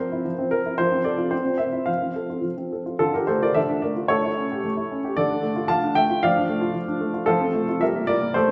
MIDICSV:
0, 0, Header, 1, 2, 480
1, 0, Start_track
1, 0, Key_signature, -1, "major"
1, 0, Tempo, 532860
1, 707, Time_signature, 2, 2, 24, 8
1, 1191, Tempo, 563380
1, 2644, Key_signature, -1, "minor"
1, 3111, Tempo, 531444
1, 7571, End_track
2, 0, Start_track
2, 0, Title_t, "Grand piano"
2, 0, Program_c, 0, 0
2, 0, Control_c, 0, 64, 127
2, 0, Note_on_c, 0, 53, 57
2, 0, Note_on_c, 0, 60, 41
2, 0, Note_on_c, 0, 70, 45
2, 0, Note_on_c, 0, 72, 72
2, 109, Note_on_c, 0, 64, 48
2, 185, Note_off_c, 0, 70, 0
2, 215, Note_off_c, 0, 53, 0
2, 228, Note_on_c, 0, 53, 47
2, 240, Control_c, 0, 64, 0
2, 251, Note_off_c, 0, 60, 0
2, 302, Note_off_c, 0, 64, 0
2, 346, Note_on_c, 0, 60, 46
2, 460, Note_on_c, 0, 70, 82
2, 461, Note_off_c, 0, 72, 0
2, 538, Note_off_c, 0, 60, 0
2, 592, Note_on_c, 0, 64, 49
2, 691, Note_off_c, 0, 53, 0
2, 701, Note_on_c, 0, 72, 89
2, 702, Note_off_c, 0, 70, 0
2, 709, Note_off_c, 0, 64, 0
2, 711, Note_on_c, 0, 53, 63
2, 826, Note_on_c, 0, 60, 40
2, 895, Control_c, 0, 64, 127
2, 941, Note_on_c, 0, 74, 67
2, 944, Note_off_c, 0, 72, 0
2, 948, Note_on_c, 0, 69, 44
2, 1020, Note_off_c, 0, 60, 0
2, 1062, Note_on_c, 0, 65, 45
2, 1142, Note_off_c, 0, 69, 0
2, 1178, Note_off_c, 0, 53, 0
2, 1178, Note_on_c, 0, 72, 68
2, 1183, Note_on_c, 0, 60, 53
2, 1188, Note_off_c, 0, 65, 0
2, 1188, Note_off_c, 0, 74, 0
2, 1202, Control_c, 0, 64, 0
2, 1290, Note_off_c, 0, 60, 0
2, 1303, Note_on_c, 0, 60, 39
2, 1359, Control_c, 0, 64, 127
2, 1408, Note_on_c, 0, 76, 67
2, 1420, Note_on_c, 0, 70, 37
2, 1421, Note_off_c, 0, 72, 0
2, 1496, Note_off_c, 0, 60, 0
2, 1534, Note_on_c, 0, 64, 34
2, 1617, Note_off_c, 0, 70, 0
2, 1646, Note_on_c, 0, 77, 67
2, 1654, Note_on_c, 0, 53, 40
2, 1660, Note_off_c, 0, 76, 0
2, 1662, Note_off_c, 0, 64, 0
2, 1682, Control_c, 0, 64, 0
2, 1790, Note_on_c, 0, 60, 33
2, 1843, Control_c, 0, 64, 127
2, 1903, Note_on_c, 0, 69, 34
2, 1986, Note_off_c, 0, 60, 0
2, 2022, Note_on_c, 0, 65, 36
2, 2103, Note_off_c, 0, 69, 0
2, 2112, Note_off_c, 0, 53, 0
2, 2125, Note_on_c, 0, 53, 33
2, 2145, Note_off_c, 0, 77, 0
2, 2164, Control_c, 0, 64, 0
2, 2224, Note_off_c, 0, 65, 0
2, 2258, Note_on_c, 0, 60, 29
2, 2387, Note_on_c, 0, 69, 31
2, 2465, Note_off_c, 0, 60, 0
2, 2500, Note_on_c, 0, 65, 36
2, 2588, Note_off_c, 0, 69, 0
2, 2609, Note_off_c, 0, 65, 0
2, 2613, Note_off_c, 0, 53, 0
2, 2613, Note_on_c, 0, 69, 81
2, 2620, Note_on_c, 0, 50, 54
2, 2622, Note_on_c, 0, 65, 63
2, 2737, Note_on_c, 0, 62, 41
2, 2739, Note_on_c, 0, 70, 65
2, 2742, Note_off_c, 0, 65, 0
2, 2746, Note_off_c, 0, 69, 0
2, 2749, Note_on_c, 0, 67, 50
2, 2829, Control_c, 0, 64, 127
2, 2851, Note_on_c, 0, 72, 70
2, 2861, Note_on_c, 0, 57, 36
2, 2862, Note_on_c, 0, 69, 55
2, 2864, Note_off_c, 0, 67, 0
2, 2868, Note_off_c, 0, 70, 0
2, 2936, Note_off_c, 0, 62, 0
2, 2977, Note_on_c, 0, 65, 40
2, 2978, Note_off_c, 0, 69, 0
2, 2982, Note_off_c, 0, 72, 0
2, 2985, Note_on_c, 0, 74, 76
2, 2986, Note_on_c, 0, 70, 55
2, 3056, Note_off_c, 0, 57, 0
2, 3076, Note_off_c, 0, 50, 0
2, 3085, Note_on_c, 0, 76, 82
2, 3089, Note_on_c, 0, 50, 44
2, 3094, Note_on_c, 0, 69, 60
2, 3098, Note_off_c, 0, 70, 0
2, 3106, Note_off_c, 0, 74, 0
2, 3117, Control_c, 0, 64, 0
2, 3175, Note_off_c, 0, 65, 0
2, 3213, Note_on_c, 0, 62, 42
2, 3328, Note_off_c, 0, 69, 0
2, 3331, Note_on_c, 0, 74, 65
2, 3338, Note_on_c, 0, 70, 49
2, 3339, Note_on_c, 0, 57, 44
2, 3340, Note_off_c, 0, 76, 0
2, 3417, Note_off_c, 0, 62, 0
2, 3460, Note_on_c, 0, 65, 45
2, 3541, Note_off_c, 0, 57, 0
2, 3570, Note_on_c, 0, 73, 90
2, 3571, Note_off_c, 0, 50, 0
2, 3571, Note_off_c, 0, 70, 0
2, 3578, Note_on_c, 0, 57, 59
2, 3585, Note_off_c, 0, 74, 0
2, 3587, Note_on_c, 0, 69, 67
2, 3589, Note_off_c, 0, 65, 0
2, 3711, Note_on_c, 0, 64, 42
2, 3750, Control_c, 0, 64, 127
2, 3834, Note_on_c, 0, 61, 42
2, 3908, Note_off_c, 0, 64, 0
2, 3959, Note_on_c, 0, 67, 43
2, 4030, Note_off_c, 0, 61, 0
2, 4057, Note_off_c, 0, 57, 0
2, 4070, Note_on_c, 0, 57, 43
2, 4089, Control_c, 0, 64, 0
2, 4153, Note_off_c, 0, 67, 0
2, 4188, Note_on_c, 0, 64, 41
2, 4321, Note_on_c, 0, 61, 43
2, 4388, Note_off_c, 0, 64, 0
2, 4436, Note_on_c, 0, 67, 49
2, 4514, Note_off_c, 0, 61, 0
2, 4521, Note_off_c, 0, 69, 0
2, 4542, Note_off_c, 0, 57, 0
2, 4547, Note_on_c, 0, 74, 88
2, 4549, Note_off_c, 0, 73, 0
2, 4555, Note_on_c, 0, 50, 61
2, 4558, Note_on_c, 0, 69, 64
2, 4559, Note_off_c, 0, 67, 0
2, 4671, Note_on_c, 0, 62, 45
2, 4756, Control_c, 0, 64, 127
2, 4784, Note_on_c, 0, 57, 43
2, 4867, Note_off_c, 0, 62, 0
2, 4904, Note_on_c, 0, 65, 52
2, 4982, Note_off_c, 0, 57, 0
2, 5002, Note_off_c, 0, 69, 0
2, 5012, Note_off_c, 0, 50, 0
2, 5013, Note_on_c, 0, 81, 92
2, 5026, Note_on_c, 0, 50, 47
2, 5029, Note_on_c, 0, 77, 64
2, 5030, Note_off_c, 0, 74, 0
2, 5043, Control_c, 0, 64, 0
2, 5101, Note_off_c, 0, 65, 0
2, 5154, Note_on_c, 0, 62, 45
2, 5253, Note_off_c, 0, 77, 0
2, 5259, Note_on_c, 0, 79, 88
2, 5262, Note_off_c, 0, 81, 0
2, 5264, Note_on_c, 0, 76, 66
2, 5265, Note_on_c, 0, 57, 43
2, 5344, Note_off_c, 0, 62, 0
2, 5390, Note_on_c, 0, 65, 47
2, 5459, Note_off_c, 0, 57, 0
2, 5489, Note_off_c, 0, 76, 0
2, 5490, Note_off_c, 0, 50, 0
2, 5503, Note_off_c, 0, 79, 0
2, 5507, Note_on_c, 0, 77, 93
2, 5509, Note_off_c, 0, 65, 0
2, 5510, Note_on_c, 0, 53, 66
2, 5519, Note_on_c, 0, 74, 73
2, 5637, Note_on_c, 0, 62, 47
2, 5689, Control_c, 0, 64, 127
2, 5748, Note_on_c, 0, 57, 46
2, 5823, Note_off_c, 0, 62, 0
2, 5852, Note_on_c, 0, 65, 54
2, 5938, Note_off_c, 0, 57, 0
2, 5958, Note_off_c, 0, 53, 0
2, 5972, Note_on_c, 0, 53, 47
2, 5993, Control_c, 0, 64, 0
2, 6050, Note_off_c, 0, 65, 0
2, 6097, Note_on_c, 0, 62, 49
2, 6212, Note_on_c, 0, 57, 49
2, 6292, Note_off_c, 0, 62, 0
2, 6328, Note_on_c, 0, 65, 56
2, 6409, Note_off_c, 0, 57, 0
2, 6432, Note_off_c, 0, 74, 0
2, 6436, Note_off_c, 0, 65, 0
2, 6438, Note_off_c, 0, 53, 0
2, 6438, Note_on_c, 0, 69, 91
2, 6450, Note_on_c, 0, 65, 73
2, 6451, Note_on_c, 0, 53, 67
2, 6462, Note_off_c, 0, 77, 0
2, 6572, Note_on_c, 0, 60, 48
2, 6640, Control_c, 0, 64, 127
2, 6683, Note_on_c, 0, 57, 50
2, 6769, Note_off_c, 0, 60, 0
2, 6810, Note_off_c, 0, 65, 0
2, 6823, Note_on_c, 0, 65, 47
2, 6886, Note_off_c, 0, 57, 0
2, 6923, Note_off_c, 0, 53, 0
2, 6931, Note_off_c, 0, 69, 0
2, 6932, Note_on_c, 0, 76, 84
2, 6941, Note_on_c, 0, 55, 57
2, 6943, Note_on_c, 0, 70, 66
2, 6944, Note_off_c, 0, 65, 0
2, 6952, Control_c, 0, 64, 0
2, 7063, Note_on_c, 0, 58, 48
2, 7144, Control_c, 0, 64, 127
2, 7165, Note_off_c, 0, 70, 0
2, 7171, Note_on_c, 0, 74, 93
2, 7176, Note_on_c, 0, 64, 48
2, 7179, Note_on_c, 0, 70, 66
2, 7181, Note_off_c, 0, 76, 0
2, 7258, Note_off_c, 0, 58, 0
2, 7301, Note_on_c, 0, 58, 53
2, 7375, Note_off_c, 0, 64, 0
2, 7408, Note_off_c, 0, 70, 0
2, 7413, Note_off_c, 0, 55, 0
2, 7416, Note_on_c, 0, 72, 88
2, 7421, Note_off_c, 0, 74, 0
2, 7426, Note_off_c, 0, 58, 0
2, 7427, Note_on_c, 0, 57, 62
2, 7435, Note_on_c, 0, 69, 66
2, 7439, Control_c, 0, 64, 0
2, 7543, Note_on_c, 0, 60, 44
2, 7571, Note_off_c, 0, 57, 0
2, 7571, Note_off_c, 0, 60, 0
2, 7571, Note_off_c, 0, 69, 0
2, 7571, Note_off_c, 0, 72, 0
2, 7571, End_track
0, 0, End_of_file